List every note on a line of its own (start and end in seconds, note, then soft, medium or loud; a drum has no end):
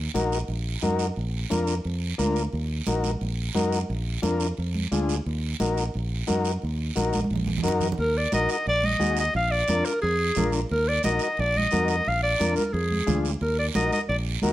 0.14 0.42 A#1 medium
0.14 0.38 D#4 medium
0.14 0.38 F#4 medium
0.14 0.38 A#4 medium
0.14 high conga medium
0.14 short guiro medium
0.32 short guiro medium
0.48 0.76 A#1 medium
0.48 high conga soft
0.48 long guiro medium
0.82 1.10 F#2 medium
0.82 1.06 D#4 medium
0.82 1.06 F#4 medium
0.82 1.07 A#4 medium
0.82 high conga medium
0.82 short guiro medium
0.99 short guiro medium
1.16 1.44 A#1 medium
1.16 high conga soft
1.16 long guiro medium
1.50 1.79 F2 medium
1.50 1.74 D4 medium
1.50 1.74 F4 medium
1.50 1.75 A#4 medium
1.50 high conga medium
1.50 short guiro medium
1.67 short guiro medium
1.85 2.12 F2 medium
1.85 high conga soft
1.85 long guiro medium
2.18 2.46 D2 medium
2.18 2.43 D4 medium
2.18 2.43 F4 medium
2.18 2.43 A#4 medium
2.18 high conga medium
2.18 short guiro medium
2.36 short guiro medium
2.53 2.80 D#2 medium
2.53 high conga soft
2.53 long guiro medium
2.86 3.15 A#1 medium
2.86 3.11 D#4 medium
2.86 3.11 F#4 medium
2.86 3.12 A#4 medium
2.86 high conga medium
2.86 short guiro medium
3.04 high conga medium
3.04 short guiro medium
3.21 3.49 A#1 medium
3.21 high conga soft
3.21 long guiro medium
3.55 3.83 F#2 medium
3.55 3.79 D#4 medium
3.55 3.79 F#4 medium
3.55 3.79 A#4 medium
3.55 high conga medium
3.55 short guiro medium
3.73 short guiro medium
3.90 4.17 A#1 medium
3.90 high conga soft
3.90 long guiro medium
4.22 4.51 F2 loud
4.22 4.47 D4 medium
4.22 4.47 F4 medium
4.22 4.47 A#4 medium
4.22 high conga medium
4.22 short guiro medium
4.40 short guiro medium
4.57 4.85 F2 medium
4.57 high conga soft
4.57 long guiro medium
4.75 high conga medium
4.92 5.19 D2 medium
4.92 5.16 D4 medium
4.92 5.16 F4 medium
4.92 5.16 G#4 medium
4.92 high conga medium
4.92 short guiro medium
5.09 short guiro medium
5.26 5.53 D#2 medium
5.26 high conga soft
5.26 long guiro medium
5.60 5.88 A#1 loud
5.60 5.84 D#4 medium
5.60 5.84 F#4 medium
5.60 5.84 A#4 medium
5.60 high conga medium
5.60 short guiro medium
5.77 short guiro medium
5.94 6.22 A#1 medium
5.94 high conga soft
5.94 long guiro medium
6.27 6.56 F#2 medium
6.27 6.51 D#4 medium
6.27 6.52 F#4 medium
6.27 6.52 A#4 medium
6.27 high conga medium
6.27 short guiro medium
6.45 short guiro medium
6.62 6.90 D#2 medium
6.62 high conga soft
6.62 long guiro medium
6.96 7.24 A#1 medium
6.96 7.20 D#4 medium
6.96 7.20 F#4 medium
6.96 7.20 A#4 medium
6.96 high conga medium
6.96 short guiro medium
7.13 high conga medium
7.13 short guiro medium
7.24 high conga medium
7.30 7.58 A#1 medium
7.30 long guiro medium
7.36 low conga medium
7.47 low conga medium
7.58 low conga medium
7.63 7.92 F#2 medium
7.63 7.87 D#4 medium
7.63 7.88 F#4 medium
7.63 7.88 A#4 loud
7.63 short guiro medium
7.68 low conga medium
7.80 low conga medium
7.80 short guiro medium
7.92 low conga medium
7.98 8.26 D#2 loud
7.98 8.19 A#4 medium
7.98 long guiro medium
8.17 8.33 D5 medium
8.32 8.46 A#1 medium
8.32 8.56 D#4 medium
8.32 8.57 F#4 medium
8.32 8.57 A#4 medium
8.32 8.49 D#5 loud
8.32 high conga medium
8.32 short guiro medium
8.49 8.67 D#5 medium
8.49 short guiro medium
8.66 8.94 A#1 medium
8.66 8.87 D5 loud
8.66 high conga soft
8.66 long guiro medium
8.83 9.18 D#5 medium
8.83 high conga medium
8.99 9.28 D#2 medium
8.99 9.24 D#4 medium
8.99 9.24 F#4 medium
8.99 9.24 G#4 medium
8.99 high conga medium
8.99 short guiro medium
9.17 9.34 D#5 loud
9.17 short guiro medium
9.34 9.62 A#1 loud
9.34 9.53 F5 medium
9.34 high conga soft
9.34 long guiro medium
9.51 9.87 D5 medium
9.68 9.82 F2 medium
9.68 9.92 D4 medium
9.68 9.92 F4 medium
9.68 9.93 A#4 medium
9.68 high conga medium
9.68 short guiro medium
9.85 10.01 A#4 medium
9.85 short guiro medium
10.01 10.30 F2 loud
10.01 10.49 G#4 medium
10.01 high conga soft
10.01 long guiro medium
10.35 10.64 A#1 medium
10.35 10.60 D4 medium
10.35 10.60 F4 medium
10.35 10.60 A#4 medium
10.35 high conga medium
10.35 low conga medium
10.35 short guiro medium
10.52 short guiro medium
10.69 10.98 D#2 loud
10.69 10.90 A#4 medium
10.69 high conga soft
10.69 long guiro medium
10.88 11.04 D5 loud
11.03 11.18 A#1 loud
11.03 11.28 D#4 medium
11.03 11.28 F#4 medium
11.03 11.28 A#4 medium
11.03 11.20 D#5 medium
11.03 high conga medium
11.03 short guiro medium
11.19 11.41 D#5 medium
11.19 short guiro medium
11.37 11.66 A#1 medium
11.37 11.59 D5 loud
11.37 high conga soft
11.37 long guiro medium
11.57 11.89 D#5 loud
11.57 high conga medium
11.71 12.00 F2 medium
11.71 11.96 D#4 medium
11.71 11.96 F#4 medium
11.71 11.96 A#4 medium
11.71 high conga medium
11.71 short guiro medium
11.88 12.09 D#5 medium
11.88 short guiro medium
12.05 12.34 A#1 loud
12.05 12.23 F5 loud
12.05 high conga soft
12.05 long guiro medium
12.23 12.55 D5 medium
12.39 12.54 F2 medium
12.39 12.63 D4 medium
12.39 12.63 F4 medium
12.39 12.64 A#4 medium
12.39 high conga medium
12.39 short guiro medium
12.56 12.74 A#4 medium
12.56 high conga medium
12.56 short guiro medium
12.73 13.01 F2 loud
12.73 13.24 G#4 medium
12.73 high conga soft
12.73 long guiro medium
12.91 high conga medium
13.07 13.35 D2 medium
13.07 13.31 D4 medium
13.07 13.31 F4 medium
13.07 13.31 G#4 medium
13.07 high conga medium
13.07 low conga medium
13.07 short guiro medium
13.25 short guiro medium
13.41 13.69 D#2 loud
13.41 13.57 A#4 medium
13.41 high conga soft
13.41 long guiro medium
13.59 13.67 D5 medium
13.75 13.89 A#1 medium
13.75 13.99 D#4 medium
13.75 13.99 F#4 medium
13.75 13.99 A#4 medium
13.75 13.91 D#5 medium
13.75 high conga loud
13.75 short guiro medium
13.92 14.00 D#5 medium
13.92 high conga medium
13.92 short guiro medium
14.09 14.36 A#1 medium
14.09 14.16 D5 medium
14.09 high conga soft
14.09 long guiro medium
14.42 14.53 D#2 medium
14.42 14.53 D#4 loud
14.42 14.53 F#4 medium
14.42 14.53 A#4 loud
14.42 high conga medium
14.42 short guiro medium